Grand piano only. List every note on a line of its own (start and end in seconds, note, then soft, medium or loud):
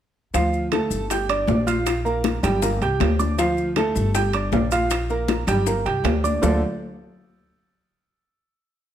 0.34 0.65 F3 medium
0.34 0.65 F4 medium
0.34 0.66 F5 medium
0.72 1.03 A3 medium
0.72 1.03 A4 medium
0.72 1.04 A5 medium
1.10 1.26 G4 medium
1.10 1.26 G5 medium
1.10 1.26 G6 medium
1.29 1.60 D4 medium
1.29 1.60 D5 medium
1.29 1.61 D6 medium
1.67 1.98 F4 medium
1.67 1.98 F5 medium
1.67 1.98 F6 medium
2.05 2.36 A#3 medium
2.05 2.36 A#4 medium
2.05 2.37 A#5 medium
2.43 2.59 G3 medium
2.43 2.59 G4 medium
2.43 2.59 G5 medium
2.62 2.78 A#3 medium
2.62 2.78 A#4 medium
2.62 2.78 A#5 medium
2.82 3.13 G4 medium
2.82 3.13 G5 medium
2.82 3.13 G6 medium
3.19 3.35 D4 medium
3.19 3.35 D5 medium
3.19 3.35 D6 medium
3.38 3.70 F3 medium
3.38 3.70 F4 medium
3.38 3.70 F5 medium
3.77 4.08 A3 medium
3.77 4.08 A4 medium
3.77 4.08 A5 medium
4.14 4.30 G4 medium
4.14 4.30 G5 medium
4.14 4.31 G6 medium
4.34 4.65 D4 medium
4.34 4.65 D5 medium
4.34 4.65 D6 medium
4.72 5.03 F4 medium
4.72 5.03 F5 medium
4.72 5.03 F6 medium
5.10 5.41 A#3 medium
5.10 5.42 A#4 medium
5.10 5.42 A#5 medium
5.48 5.64 G3 medium
5.48 5.64 G4 medium
5.48 5.64 G5 medium
5.67 5.82 A#3 medium
5.67 5.83 A#4 medium
5.67 5.83 A#5 medium
5.86 6.17 G4 medium
5.86 6.17 G5 medium
5.86 6.17 G6 medium
6.23 6.39 D4 medium
6.23 6.39 D5 medium
6.23 6.40 D6 medium
6.42 6.60 D3 medium
6.42 6.60 A3 medium
6.42 6.60 D4 medium
6.42 6.60 F4 medium
6.42 6.60 A4 medium
6.42 6.60 D5 medium